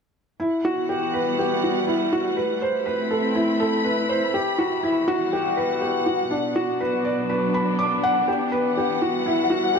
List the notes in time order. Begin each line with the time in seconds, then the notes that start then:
0.40 E3 E4
0.53 F#5
0.61 B3 F#4
0.89 G4
1.14 G3 B4
1.39 G4
1.64 F#4
1.87 E4
2.13 F#4
2.37 A3 B4
2.50 E4
2.62 C5
2.81 C4 B5
2.86 B4
3.11 A4
3.35 E4
3.60 A4
3.84 B4
4.09 C5
4.34 E3 G4
4.59 F#4
4.83 E4
4.91 B3
5.08 F#4
5.17 F#5
5.23 G3
5.33 G4
5.57 B4
5.81 G4
6.06 F#4
6.30 B2 D4
6.56 F#4
6.67 D4
6.79 F#3 B4
7.05 D5
7.30 B4
7.54 B5
7.79 D6
8.03 F#5
8.28 E3 G4
8.52 B4
8.66 F#5
8.77 G4
9.02 F#4
9.17 G3
9.26 E4
9.50 F#4
9.75 G4